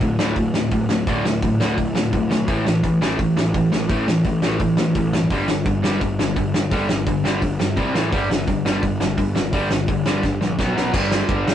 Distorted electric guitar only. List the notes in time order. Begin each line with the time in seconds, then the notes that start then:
0.01 D2 A2
0.19 D2 A2 D3
0.36 D2 A2
0.54 D2 A2
0.72 D2 A2
0.90 D2 A2
1.07 D2 A2 D3
1.25 D2 A2
1.42 D2 A2
1.60 D2 A2 D3
1.77 D2 A2
1.95 D2 A2
2.13 D2 A2
2.30 D2 A2
2.48 A2 E3 A3
2.66 A2 E3
2.83 A2 E3
3.01 A2 E3 A3
3.18 A2 E3
3.37 A2 E3
3.54 A2 E3
3.72 A2 E3
3.89 A2 E3 A3
4.07 A2 E3
4.25 A2 E3
4.43 A2 E3 A3
4.61 A2 E3
4.78 A2 E3
4.96 A2 E3
5.14 A2 E3
5.31 G2 D3 G3
5.49 G2 D3
5.66 G2 D3
5.83 G2 D3 G3
6.02 G2 D3
6.19 G2 D3
6.36 G2 D3
6.54 G2 D3
6.71 G2 D3 G3
6.89 G2 D3
7.07 G2 D3
7.24 G2 D3 G3
7.42 G2 D3
7.59 G2 D3
7.76 C3 G3 C4
7.95 A2 E3 A3
8.12 G2 D3 G3
8.30 G2 D3
8.47 G2 D3
8.65 G2 D3 G3
8.82 G2 D3
9.00 G2 D3
9.17 G2 D3
9.35 G2 D3
9.53 G2 D3 G3
9.71 G2 D3
9.88 G2 D3
10.06 G2 D3 G3
10.24 G2 D3
10.41 G2 D3
10.59 B2 F#3 B3
10.76 B2 F#3 B3
10.92 G2 D3 G3